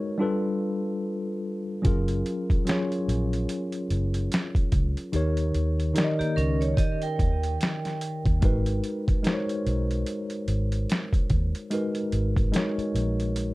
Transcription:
Already playing: tine electric piano G#3 D#4 F#4 A#4 B4 C#5
0.18 tine electric piano G3 D4 F4 A4
0.22 tine electric piano B4
1.82 fingered electric bass F#1, tine electric piano F#3 C#4 F4 G#4, kick, closed hi-hat
1.86 tine electric piano A#4
2.08 closed hi-hat
2.26 closed hi-hat
2.50 kick, closed hi-hat
2.65 tine electric piano F#3 C#4 F4 G#4, closed hi-hat
2.69 tine electric piano C#5, snare
2.92 closed hi-hat
3.08 fingered electric bass A#1, closed hi-hat
3.33 closed hi-hat
3.49 closed hi-hat
3.72 closed hi-hat
3.90 fingered electric bass F#1, closed hi-hat
4.14 closed hi-hat
4.32 snare, closed hi-hat
4.55 kick, closed hi-hat
4.72 fingered electric bass C#2, kick, closed hi-hat
4.97 closed hi-hat
5.12 fingered electric bass D#2, tine electric piano D#3 D#4 G4 A#4 C#5, closed hi-hat
5.37 closed hi-hat
5.54 fingered electric bass D#2, closed hi-hat
5.80 closed hi-hat
5.94 tine electric piano D#3 D#4 G4 A#4 D5, closed hi-hat
5.98 snare
6.04 tine electric piano D#5
6.19 vibraphone A#3 G4, muted fingered electric bass stroke, closed hi-hat
6.36 fingered electric bass C#2, vibraphone C#4 A#4, closed hi-hat
6.61 vibraphone C#5, closed hi-hat
6.77 vibraphone G4 D#5, kick, closed hi-hat
7.02 vibraphone A#4 G5, closed hi-hat
7.19 fingered electric bass D#2, kick, closed hi-hat
7.43 closed hi-hat
7.61 snare, closed hi-hat
7.85 snare, closed hi-hat
8.01 closed hi-hat
8.26 fingered electric bass D#2, kick, closed hi-hat
8.41 fingered electric bass G#1, tine electric piano G#3 D#4 F#4 A#4 B4, kick, closed hi-hat
8.66 closed hi-hat
8.84 closed hi-hat
9.08 kick, closed hi-hat
9.23 tine electric piano G#3 D#4 F#4 A#4, closed hi-hat
9.27 tine electric piano C5, snare
9.33 tine electric piano C#5
9.49 closed hi-hat
9.66 fingered electric bass B1, closed hi-hat
9.91 closed hi-hat
10.06 closed hi-hat
10.30 closed hi-hat
10.48 fingered electric bass G#1, closed hi-hat
10.72 closed hi-hat
10.90 snare, closed hi-hat
11.13 kick, closed hi-hat
11.30 fingered electric bass D#2, kick, closed hi-hat
11.55 closed hi-hat
11.71 tine electric piano G#3 D#4 F#4 A#4 B4, closed hi-hat
11.95 closed hi-hat
12.12 fingered electric bass G#1, closed hi-hat
12.37 kick, closed hi-hat
12.52 tine electric piano G#3 D#4 F#4 A#4, closed hi-hat
12.56 tine electric piano C#5, snare
12.78 muted fingered electric bass stroke, closed hi-hat
12.95 fingered electric bass A#1, closed hi-hat
13.20 closed hi-hat
13.36 closed hi-hat

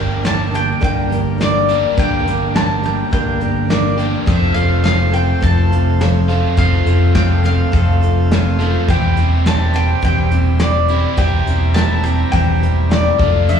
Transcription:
Already playing: fingered electric bass G1, overdriven electric guitar G2 D3 G3 A#3 D4 G4, steel-string acoustic guitar G3 A#3 D4 G4, accordion A#4 D5 G5 D6, mandolin G5
0.23 steel-string acoustic guitar G3 A#3 D4 G4, mandolin A5, snare, closed hi-hat
0.52 steel-string acoustic guitar G3 A#3 D4 G4, mandolin G5, closed hi-hat
0.81 fingered electric bass G1, steel-string acoustic guitar G2 D3 G3 A#3 D4 G4, mandolin G5, kick, closed hi-hat
1.10 steel-string acoustic guitar G3 A#3 D4 G4, closed hi-hat
1.38 steel-string acoustic guitar G3 A#3 D4 G4, mandolin D5, snare, closed hi-hat
1.68 overdriven electric guitar D3, steel-string acoustic guitar G3 A#3 D4 G4, closed hi-hat
1.72 overdriven electric guitar G2
1.97 fingered electric bass G1, steel-string acoustic guitar G2 D3 G3 A#3 D4 G4, mandolin G5, kick, closed hi-hat
2.25 fingered electric bass G1, steel-string acoustic guitar G3 A#3 D4 G4, closed hi-hat
2.54 steel-string acoustic guitar G3 A#3 D4 G4, mandolin A5, snare, closed hi-hat
2.82 steel-string acoustic guitar G3 A#3 D4 G4, mandolin G5, closed hi-hat
3.11 fingered electric bass G1, steel-string acoustic guitar G2 D3 G3 A#3 D4 G4, mandolin G5, kick, closed hi-hat
3.40 steel-string acoustic guitar G3 A#3 D4 G4, closed hi-hat
3.68 steel-string acoustic guitar G3 A#3 D4 G4, mandolin D5, snare, closed hi-hat
3.96 steel-string acoustic guitar G3 A#3 D4 G4, closed hi-hat
4.01 overdriven electric guitar G2 D3
4.26 fingered electric bass F1, overdriven electric guitar F2 C3 A3, steel-string acoustic guitar F3 C4 F4 A4, accordion A4 C5 F5 C6, mandolin E5, kick, closed hi-hat
4.54 fingered electric bass F1, steel-string acoustic guitar C4 F4 A4, mandolin F5, closed hi-hat
4.83 steel-string acoustic guitar F3 C4 F4 A4, mandolin F5, snare, closed hi-hat
5.11 steel-string acoustic guitar C4 F4 A4, mandolin G5, closed hi-hat
5.41 fingered electric bass F1, steel-string acoustic guitar F3 C4 F4 A4, mandolin A5, kick, closed hi-hat
5.70 steel-string acoustic guitar C4 F4 A4, closed hi-hat
5.99 steel-string acoustic guitar F3 C4 F4 A4, snare, closed hi-hat
6.28 overdriven electric guitar F2 C3 F3 A3, steel-string acoustic guitar C4 F4 A4, closed hi-hat
6.57 fingered electric bass F1, overdriven electric guitar F2 C3 A3, steel-string acoustic guitar F3 C4 F4 A4, mandolin F5, kick, closed hi-hat
6.85 fingered electric bass F1, steel-string acoustic guitar C4 F4 A4, closed hi-hat
7.15 steel-string acoustic guitar F3 C4 F4 A4, mandolin G5, kick, snare, closed hi-hat
7.44 steel-string acoustic guitar C4 F4 A4, mandolin F5, closed hi-hat
7.72 fingered electric bass F1, steel-string acoustic guitar F3 C4 F4 A4, kick, closed hi-hat
8.01 steel-string acoustic guitar C4 F4 A4, closed hi-hat
8.31 steel-string acoustic guitar F3 C4 F4 A4, snare, closed hi-hat
8.59 overdriven electric guitar F2 C3 F3 A3, steel-string acoustic guitar C4 F4 A4, closed hi-hat
8.88 fingered electric bass E1, steel-string acoustic guitar E3 G3 C4 E4 G4, accordion G4 E5, mandolin G5, kick, closed hi-hat
9.16 fingered electric bass E1, steel-string acoustic guitar C4 E4 G4, closed hi-hat
9.46 steel-string acoustic guitar G3 C4 E4 G4, mandolin A5, snare, closed hi-hat
9.73 steel-string acoustic guitar C4 E4 G4, mandolin G5, closed hi-hat
10.02 fingered electric bass E1, steel-string acoustic guitar E3 G3 C4 E4 G4, mandolin G5, kick, closed hi-hat
10.31 steel-string acoustic guitar C4 E4 G4, closed hi-hat
10.59 steel-string acoustic guitar G3 C4 E4 G4, mandolin D5, snare, closed hi-hat
10.88 overdriven electric guitar G3, steel-string acoustic guitar C4 E4 G4, closed hi-hat
10.93 overdriven electric guitar E3
11.17 fingered electric bass E1, steel-string acoustic guitar E3 G3 C4 E4 G4, mandolin G5, accordion A#5, kick, closed hi-hat
11.46 fingered electric bass E1, steel-string acoustic guitar C4 E4 G4, closed hi-hat
11.74 steel-string acoustic guitar G3 C4 E4 G4, mandolin A5, snare, closed hi-hat
12.04 steel-string acoustic guitar C4 E4 G4, mandolin G5, closed hi-hat
12.32 fingered electric bass E1, steel-string acoustic guitar E3 G3 C4 E4 G4, mandolin G5, kick, closed hi-hat
12.61 steel-string acoustic guitar C4 E4 G4, closed hi-hat
12.89 steel-string acoustic guitar G3 C4 E4 G4, mandolin D5, snare, closed hi-hat
13.19 fingered electric bass F1, overdriven electric guitar F3 A3, steel-string acoustic guitar D4 F4 A4, accordion A4 D5 F5 D6, kick, closed hi-hat
13.48 steel-string acoustic guitar F3 D4 F4 A4, mandolin E5, closed hi-hat

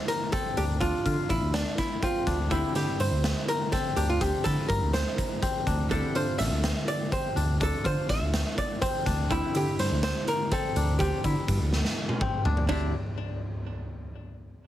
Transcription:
Already playing: hollow-body jazz guitar D3 G3 C4 F4, kora D4 F4
0.08 hollow-body jazz guitar A#4, snare, closed hi-hat
0.32 kora C4, hollow-body jazz guitar A4, kick, closed hi-hat
0.57 analog synth bass D2, kora D4, hollow-body jazz guitar G4, closed hi-hat
0.80 analog synth bass D2, kora D4, hollow-body jazz guitar F4, kick, closed hi-hat
1.06 analog synth bass D3, kora F4, kick, closed hi-hat
1.30 analog synth bass A1, hollow-body jazz guitar E4, kick, closed hi-hat
1.41 analog synth bass D2
1.54 hollow-body jazz guitar D4, snare, closed hi-hat
1.78 hollow-body jazz guitar E4, kick, snare, closed hi-hat
2.03 kora C4, hollow-body jazz guitar F4, kick, closed hi-hat
2.27 analog synth bass D2, kora D4, kick, snare, closed hi-hat
2.50 analog synth bass D2, hollow-body jazz guitar D3 G3 C4 E4, kora C4, kick, closed hi-hat
2.75 analog synth bass D3, kora E4, hollow-body jazz guitar G4, snare, closed hi-hat
2.99 analog synth bass G2, hollow-body jazz guitar C5, closed hi-hat
3.11 analog synth bass D2
3.24 snare, closed hi-hat
3.48 hollow-body jazz guitar A#4, closed hi-hat
3.72 kora C4, hollow-body jazz guitar A4, kick, snare, closed hi-hat
3.96 analog synth bass D2, kora D4, hollow-body jazz guitar G4, closed hi-hat
4.09 hollow-body jazz guitar F4
4.21 analog synth bass D2, kora C4, hollow-body jazz guitar G4, kick, closed hi-hat
4.44 analog synth bass D3, kora E4, hollow-body jazz guitar A4, kick, snare, closed hi-hat
4.68 analog synth bass G2, hollow-body jazz guitar A#4, kick, closed hi-hat
4.82 analog synth bass D2
4.93 hollow-body jazz guitar C5, snare, closed hi-hat
5.18 kick, closed hi-hat
5.42 kora C4, kick, closed hi-hat
5.67 analog synth bass D2, kora D4, kick, closed hi-hat
5.89 analog synth bass D2, hollow-body jazz guitar D3 G3 C4 E4 A4, kora D4, kick, closed hi-hat
6.15 analog synth bass D3, kora F4, hollow-body jazz guitar C5, closed hi-hat
6.39 analog synth bass A1, hollow-body jazz guitar E5, snare, closed hi-hat
6.51 analog synth bass D2
6.64 snare, closed hi-hat
6.88 hollow-body jazz guitar D5, closed hi-hat
7.12 kora C4, hollow-body jazz guitar C5, kick, closed hi-hat
7.36 analog synth bass D2, kora D4, closed hi-hat
7.60 analog synth bass D2, kora D4, hollow-body jazz guitar A4, kick, closed hi-hat
7.84 analog synth bass D3, kora F4, hollow-body jazz guitar C5, kick, closed hi-hat
8.09 analog synth bass A1, hollow-body jazz guitar E5, kick, snare, closed hi-hat
8.21 analog synth bass D2
8.34 snare, closed hi-hat
8.58 hollow-body jazz guitar D5, kick, closed hi-hat
8.81 kora C4, hollow-body jazz guitar C5, kick, closed hi-hat
9.06 analog synth bass D2, kora D4, kick, snare, closed hi-hat
9.29 analog synth bass D2, hollow-body jazz guitar D3 G3 C4 E4, kora C4, kick, closed hi-hat
9.55 analog synth bass D3, kora E4, hollow-body jazz guitar G4, closed hi-hat
9.79 analog synth bass G2, hollow-body jazz guitar C5, snare, closed hi-hat
9.91 analog synth bass D2
10.03 hollow-body jazz guitar C5, snare, closed hi-hat
10.28 hollow-body jazz guitar A#4, closed hi-hat
10.52 kora C4, hollow-body jazz guitar A4, kick, closed hi-hat
10.76 analog synth bass D2, kora D4, closed hi-hat
10.99 analog synth bass D2, kora C4, hollow-body jazz guitar G4, kick, closed hi-hat
11.24 analog synth bass D3, kora E4, kick, closed hi-hat
11.48 analog synth bass G2, kick, closed hi-hat
11.60 analog synth bass D2
11.73 snare
11.85 snare
12.09 high tom
12.21 kora C4, kick, mid tom
12.45 analog synth bass D2, kora D4, floor tom
12.57 floor tom
12.69 analog synth bass D2, hollow-body jazz guitar D3 G3 C4 D4 E4, kora D4, kick, crash

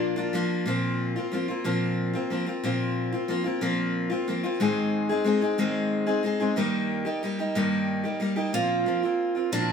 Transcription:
Already playing: string section A#2 F3 D4, steel-string acoustic guitar A#3 D4 F4
0.16 steel-string acoustic guitar A#3 D4 F4
0.33 steel-string acoustic guitar F3 A#3 D4 F4
0.66 steel-string acoustic guitar A#2 F3 A#3 C4 F4
1.16 steel-string acoustic guitar A#3 C4 F4
1.32 steel-string acoustic guitar F3 A#3 C4 F4
1.48 steel-string acoustic guitar A#3 C4 F4
1.64 steel-string acoustic guitar A#2 F3 A#3 C4 F4
2.13 steel-string acoustic guitar A#3 C4 F4
2.30 steel-string acoustic guitar F3 A#3 C4 F4
2.46 steel-string acoustic guitar A#3 C4 F4
2.63 steel-string acoustic guitar A#2 F3 A#3 C4 F4
3.12 steel-string acoustic guitar A#3 C4 F4
3.28 steel-string acoustic guitar F3 A#3 C4 F4
3.44 steel-string acoustic guitar A#3 C4 F4
3.61 steel-string acoustic guitar A#2 F3 A#3 C4 F4
4.10 steel-string acoustic guitar A#3 C4 F4
4.28 steel-string acoustic guitar F3 A#3 C4 F4
4.44 steel-string acoustic guitar A#3 C4 F4
4.60 steel-string acoustic guitar G#2 D#3 G#3 C4 D#4 G#4
5.09 steel-string acoustic guitar G#3 C4 D#4 G#4
5.24 steel-string acoustic guitar G#3 C4 D#4 G#4
5.41 steel-string acoustic guitar G#3 C4 D#4 G#4
5.58 steel-string acoustic guitar G#2 D#3 G#3 C4 D#4 G#4
6.06 steel-string acoustic guitar G#3 C4 D#4 G#4
6.23 steel-string acoustic guitar G#3 C4 D#4 G#4
6.40 steel-string acoustic guitar G#3 C4 D#4 G#4
6.56 steel-string acoustic guitar G2 D#3 G3 A#3 D#4 G4
7.05 steel-string acoustic guitar G3 A#3 D#4 G4
7.23 steel-string acoustic guitar G3 A#3 D#4 G4
7.39 steel-string acoustic guitar G3 A#3 D#4 G4
7.55 steel-string acoustic guitar G2 D#3 G3 A#3 D#4 G4
8.04 steel-string acoustic guitar G3 A#3 D#4 G4
8.20 steel-string acoustic guitar G3 A#3 D#4 G4
8.36 steel-string acoustic guitar G3 A#3 D#4 G4
8.53 steel-string acoustic guitar A#2 F3 A#3 C4 F4
8.86 steel-string acoustic guitar F3 A#3 C4 F4
9.03 steel-string acoustic guitar A#3 C4 F4
9.35 steel-string acoustic guitar A#3 C4 F4
9.52 steel-string acoustic guitar A#2 F3 A#3 C4 D4 F4

